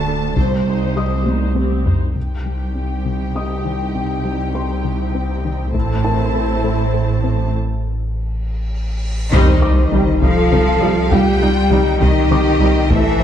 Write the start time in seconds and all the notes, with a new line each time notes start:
Already playing: D1 D2 A5 F#6
0.08 D4 A4
0.36 C2 C3 C4 G4 C5, taiko
0.68 D#4 C5
0.96 G3 C4 G4 D#5 D#6
1.26 C3 D#4 C5, taiko high
1.56 C4 G4, taiko high
1.86 D#4 C5, taiko low
2.15 C2 C3 C4 D#4 G4 G5, taiko
2.46 G3
2.75 C4
3.05 C3
3.35 C4 D#5 D#6
3.65 D#3
3.95 C3
4.25 G3
4.55 C4 C6
4.84 C3
5.15 C4
5.45 D#3
5.74 A1 A2 A3 C4 E4 C5 A5, taiko
6.04 E4 A#4 A5
6.35 A4
6.64 A3
6.94 A4
7.24 C4
7.53 cymbal swell
9.32 C2 C3 D#3 G3 D#4 C5 D#5, taiko, sub drop
9.62 C2 G3 D#4 D6
9.92 C2 C3 G3 D#4, taiko mid
10.21 C2 C3 F3 G3 D#4 F4 A4 F5, taiko
10.51 C2 G3 C4 D#4, taiko mid
10.80 C2 C3 G3 D#4
11.11 C2 C3 G3 D#4 F4 G4 F5 G5, taiko
11.40 C2 G3 D#4 F4
11.70 C2 C3 G3 D#4, taiko mid
12.00 C2 C3 D#3 G3 D#4 G4 D#5, taiko
12.30 C2 G3 C4 D#4 D6, taiko mid
12.60 C2 C3 G3 D#4
12.90 A1 E3 A3 C4 E4 A4 E5, taiko
13.19 A1 C5